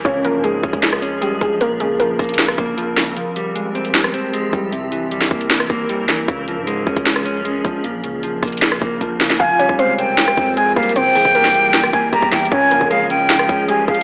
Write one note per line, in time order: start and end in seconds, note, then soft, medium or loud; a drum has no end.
0.05 0.36 C#2 loud
0.05 1.02 C#3 medium
0.05 1.59 F3 medium
0.05 1.59 C#4 medium
0.05 0.23 C#4 medium
0.05 1.59 G#4 medium
0.05 0.23 C#5 medium
0.05 kick loud
0.05 closed hi-hat medium
0.25 1.22 F3 medium
0.25 0.43 A#3 medium
0.25 0.43 A#4 medium
0.25 closed hi-hat medium
0.34 0.62 G#2 loud
0.44 1.20 G#3 loud
0.44 1.18 G#3 medium
0.44 1.18 G#4 medium
0.44 closed hi-hat medium
0.63 0.73 C#2 loud
0.63 1.01 C#4 medium
0.63 kick loud
0.63 closed hi-hat soft
0.73 1.39 C#2 loud
0.73 kick loud
0.73 closed hi-hat medium
0.83 snare loud
0.83 closed hi-hat medium
0.93 cross-stick loud
1.02 1.61 C#4 medium
1.02 closed hi-hat medium
1.21 1.40 G3 medium
1.21 1.61 G#3 medium
1.21 1.40 G4 medium
1.21 closed hi-hat medium
1.41 1.82 A#1 loud
1.41 1.61 F3 medium
1.41 1.60 G#3 medium
1.41 1.59 G#4 medium
1.41 kick medium
1.41 closed hi-hat medium
1.61 2.58 A#2 medium
1.61 3.15 C#3 medium
1.61 1.79 A#3 medium
1.61 3.15 C4 medium
1.61 3.15 A#4 medium
1.61 1.79 A#4 medium
1.61 closed hi-hat medium
1.80 2.01 C#2 loud
1.80 2.78 C#3 medium
1.80 1.99 G#3 medium
1.80 1.98 G#4 medium
1.80 closed hi-hat medium
2.00 2.18 A#1 loud
2.00 2.76 F3 medium
2.00 3.13 A#3 medium
2.00 3.13 A#4 medium
2.00 closed hi-hat medium
2.19 2.57 A#1 loud
2.19 2.57 A#3 medium
2.19 kick loud
2.19 cross-stick medium
2.19 closed hi-hat soft
2.19 open hi-hat medium
2.24 closed hi-hat medium
2.29 closed hi-hat medium
2.34 closed hi-hat medium
2.39 snare loud
2.39 closed hi-hat medium
2.48 cross-stick loud
2.58 2.99 A#1 loud
2.58 3.16 A#3 medium
2.58 kick medium
2.58 closed hi-hat medium
2.78 3.15 F3 loud
2.78 closed hi-hat medium
2.97 3.16 C#2 loud
2.97 3.16 C#3 medium
2.97 snare medium
2.97 open hi-hat medium
3.17 4.14 F3 medium
3.17 4.71 F3 medium
3.17 4.71 C4 medium
3.17 4.71 G4 medium
3.17 closed hi-hat medium
3.36 4.33 G3 medium
3.36 closed hi-hat medium
3.55 4.32 G#3 medium
3.55 closed hi-hat medium
3.75 4.12 C4 medium
3.75 closed hi-hat soft
3.85 closed hi-hat medium
3.94 snare loud
3.94 closed hi-hat medium
4.04 cross-stick loud
4.14 4.72 C4 medium
4.14 closed hi-hat medium
4.33 4.72 G#3 loud
4.33 closed hi-hat medium
4.53 5.28 C2 loud
4.53 4.72 G3 medium
4.53 kick loud
4.53 closed hi-hat medium
4.72 5.70 C3 loud
4.72 6.27 E3 medium
4.72 6.27 C4 medium
4.72 6.27 A#4 medium
4.72 closed hi-hat medium
4.92 5.89 E3 medium
4.92 closed hi-hat medium
5.11 5.30 G3 medium
5.11 closed hi-hat medium
5.21 snare medium
5.31 5.50 C2 loud
5.31 5.68 A#3 medium
5.31 kick loud
5.31 closed hi-hat soft
5.41 closed hi-hat medium
5.50 snare loud
5.50 closed hi-hat medium
5.60 cross-stick loud
5.70 6.26 C2 loud
5.70 6.28 A#3 medium
5.70 kick medium
5.70 closed hi-hat medium
5.89 6.09 G3 medium
5.89 closed hi-hat medium
6.09 6.28 E3 medium
6.09 snare medium
6.09 closed hi-hat medium
6.28 6.59 C#2 loud
6.28 7.26 C#3 medium
6.28 7.83 F3 medium
6.28 7.83 C#4 medium
6.28 7.83 G#4 medium
6.28 kick loud
6.28 closed hi-hat medium
6.48 7.45 F3 medium
6.48 closed hi-hat medium
6.57 6.85 G#2 loud
6.67 7.44 G#3 medium
6.67 closed hi-hat medium
6.87 6.96 C#2 loud
6.87 7.24 C#4 medium
6.87 kick loud
6.87 closed hi-hat medium
6.96 7.62 C#2 loud
6.96 kick loud
6.96 closed hi-hat medium
7.06 snare loud
7.06 closed hi-hat medium
7.16 cross-stick loud
7.25 7.84 C#4 medium
7.25 closed hi-hat medium
7.45 7.84 G#3 medium
7.45 closed hi-hat medium
7.65 8.05 A#1 loud
7.65 7.84 F3 medium
7.65 kick medium
7.65 closed hi-hat medium
7.84 8.82 A#2 medium
7.84 9.38 C#3 medium
7.84 9.38 C4 medium
7.84 9.38 A#4 medium
7.84 closed hi-hat medium
8.04 8.25 C#2 loud
8.04 9.01 C#3 medium
8.04 closed hi-hat medium
8.23 8.42 A#1 loud
8.23 9.00 F3 medium
8.23 closed hi-hat medium
8.42 8.80 A#1 loud
8.42 8.80 A#3 medium
8.42 kick loud
8.42 cross-stick medium
8.42 closed hi-hat soft
8.42 open hi-hat medium
8.47 closed hi-hat medium
8.52 closed hi-hat medium
8.57 closed hi-hat medium
8.62 snare loud
8.62 closed hi-hat medium
8.72 cross-stick loud
8.81 9.00 A#1 loud
8.81 9.40 A#3 medium
8.81 kick medium
8.81 closed hi-hat medium
9.01 9.38 A#1 loud
9.01 9.39 F3 medium
9.01 kick medium
9.01 closed hi-hat medium
9.21 9.40 C#3 medium
9.21 snare medium
9.21 open hi-hat medium
9.30 snare medium
9.40 9.68 F1 loud
9.40 9.78 F3 medium
9.40 10.94 F3 medium
9.40 10.94 C4 medium
9.40 10.94 F4 medium
9.40 9.58 F4 medium
9.40 9.58 F5 medium
9.40 9.77 G#5 loud
9.40 kick loud
9.40 closed hi-hat medium
9.59 10.57 G3 medium
9.59 9.78 C#4 medium
9.59 9.77 C#5 medium
9.59 closed hi-hat medium
9.69 10.35 F1 loud
9.69 kick loud
9.79 10.56 G#3 medium
9.79 10.53 C4 medium
9.79 10.53 C5 medium
9.79 9.97 F5 medium
9.79 closed hi-hat medium
9.98 10.36 C4 medium
9.98 10.53 G5 medium
9.98 closed hi-hat medium
10.18 snare loud
10.18 closed hi-hat medium
10.28 cross-stick loud
10.37 10.75 F2 loud
10.37 10.96 C4 medium
10.37 kick medium
10.37 closed hi-hat medium
10.57 10.96 G#3 loud
10.57 10.75 G#3 medium
10.57 10.75 G#4 medium
10.57 10.75 G#5 loud
10.57 closed hi-hat medium
10.76 11.23 C2 loud
10.76 10.96 G3 medium
10.76 10.95 A#3 medium
10.76 10.94 A#4 medium
10.76 10.95 F5 medium
10.76 kick loud
10.76 closed hi-hat medium
10.83 closed hi-hat medium
10.89 closed hi-hat medium
10.96 11.93 C3 loud
10.96 12.50 E3 medium
10.96 12.50 C4 medium
10.96 11.14 C4 medium
10.96 12.50 A#4 medium
10.96 11.14 C5 medium
10.96 11.89 G5 loud
10.96 closed hi-hat medium
11.15 12.13 E3 medium
11.15 11.34 G#3 medium
11.15 11.33 G#4 medium
11.15 open hi-hat medium
11.25 11.53 E2 loud
11.25 kick loud
11.35 12.12 G3 medium
11.35 12.48 A#3 medium
11.35 12.48 A#4 medium
11.35 closed hi-hat medium
11.45 snare medium
11.54 11.73 C2 loud
11.54 11.92 A#3 medium
11.54 closed hi-hat medium
11.74 snare loud
11.74 closed hi-hat medium
11.84 cross-stick loud
11.93 12.12 C2 loud
11.93 12.52 A#3 medium
11.93 12.12 G#5 medium
11.93 kick medium
11.93 closed hi-hat medium
12.13 12.50 E2 loud
12.13 12.52 G3 medium
12.13 12.31 A#5 medium
12.13 kick loud
12.13 closed hi-hat medium
12.22 kick loud
12.32 12.51 E3 medium
12.32 12.51 G5 medium
12.32 kick loud
12.32 snare medium
12.32 closed hi-hat medium
12.39 closed hi-hat medium
12.45 closed hi-hat medium
12.52 12.73 C#2 loud
12.52 13.49 C#3 loud
12.52 14.03 F3 medium
12.52 14.03 C#4 medium
12.52 12.70 C#4 medium
12.52 14.03 G#4 medium
12.52 12.70 C#5 medium
12.52 12.88 G#5 loud
12.52 kick loud
12.52 closed hi-hat medium
12.71 12.80 G#2 loud
12.71 13.69 F3 medium
12.71 12.90 A#3 medium
12.71 12.89 A#4 medium
12.71 closed hi-hat medium
12.81 13.46 C#3 loud
12.81 kick loud
12.90 13.67 G#3 loud
12.90 13.65 G#3 medium
12.90 13.65 G#4 medium
12.90 13.09 F5 loud
12.90 closed hi-hat medium
13.10 13.48 C#4 medium
13.10 13.65 G5 medium
13.10 closed hi-hat medium
13.30 snare loud
13.30 closed hi-hat medium
13.39 cross-stick loud
13.49 13.87 C#2 loud
13.49 14.03 C#4 medium
13.49 kick medium
13.49 closed hi-hat medium
13.68 13.87 G3 medium
13.68 14.03 G#3 medium
13.68 13.87 G4 medium
13.68 13.87 G#5 medium
13.68 closed hi-hat medium
13.88 14.03 A#1 loud
13.88 14.03 F3 medium
13.88 14.03 G#3 medium
13.88 14.03 G#4 medium
13.88 14.03 F5 medium
13.88 kick loud
13.88 closed hi-hat soft
13.95 closed hi-hat medium